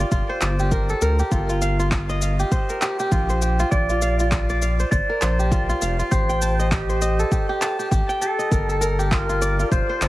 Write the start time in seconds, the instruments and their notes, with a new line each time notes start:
Already playing: kora G4 A#4 D5
0.00 kora F4
0.12 analog synth bass F1, kora F4, kick, cabasa
0.29 kora C5
0.41 analog synth bass G1, kora D5, clap, cabasa
0.59 kora G4, cabasa
0.72 kora A#4, kick, cabasa
0.89 kora A4, cabasa
1.02 analog synth bass D2, kora A#4, cabasa
1.19 kora G4, cabasa
1.32 analog synth bass G1, kora F4, kick, cabasa
1.49 kora F4, cabasa
1.62 kora F5, cabasa
1.79 kora F4, cabasa
1.92 kick, clap, cabasa
2.09 kora D#5, cabasa
2.22 kora F5, cabasa
2.40 kora G4, cabasa
2.52 kora C5, kick, cabasa
2.69 kora A#4, cabasa
2.82 kora G4, clap, cabasa
2.99 kora G4, cabasa
3.12 analog synth bass A#1, kora F4, kick, cabasa
3.29 kora C5, cabasa
3.42 kora G4, cabasa
3.60 kora F4, cabasa
3.71 analog synth bass A#1, kora F4, electric slide guitar D5, kick, cabasa
3.90 kora F4, cabasa
4.02 kora F5, cabasa
4.19 kora F4, cabasa
4.32 kora F4, kick, clap, cabasa
4.50 kora D5, cabasa
4.62 kora F5, cabasa
4.80 kora C5, cabasa
4.91 analog synth bass G1, kora C5, electric slide guitar D5, kick, cabasa
5.09 kora A#4
5.22 analog synth bass A#1, kora C5, clap, cabasa
5.39 kora G4, cabasa
5.52 kora F4, kick, cabasa
5.69 kora F4, cabasa
5.82 analog synth bass F1, kora F5, cabasa
5.99 kora F4, cabasa
6.11 analog synth bass A1, kora G4, electric slide guitar C5, kick, cabasa
6.29 kora G5, cabasa
6.42 kora A5, cabasa
6.59 kora D#5, cabasa
6.71 electric slide guitar G4, kora D#5, kick, clap, cabasa
6.89 kora C5, cabasa
7.02 kora D#5, cabasa
7.19 kora A4, cabasa
7.32 kora G4, kick, cabasa
7.49 kora G4
7.61 kora A5, clap, cabasa
7.79 kora G4, cabasa
7.91 analog synth bass A1, kora G4, kick, cabasa
8.09 kora G5, cabasa
8.21 electric slide guitar A4, kora A5, cabasa
8.39 kora D#5, cabasa
8.51 analog synth bass G1, kora A#4, kick, cabasa
8.69 kora A4, cabasa
8.81 kora A#4, cabasa
8.99 kora G4, cabasa
9.12 kora F4, electric slide guitar A#4, kick, clap, cabasa
9.29 kora F4, cabasa
9.42 kora D5, cabasa
9.59 kora F4, cabasa
9.72 analog synth bass F1, kora F4, electric slide guitar C5, kick, cabasa
9.89 kora C5
10.01 analog synth bass G1, kora D5, clap, cabasa